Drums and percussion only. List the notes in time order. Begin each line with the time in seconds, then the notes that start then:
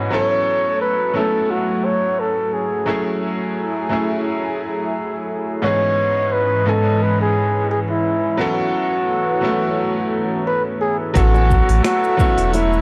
11.15 kick, open hi-hat, cabasa
11.34 high bongo, cabasa
11.50 kick, cabasa
11.69 open hi-hat, cabasa
11.84 finger snap, open hi-hat, high bongo, cabasa
12.04 cabasa
12.19 kick, cabasa
12.38 open hi-hat, cabasa
12.53 open hi-hat, high bongo, cabasa
12.73 cabasa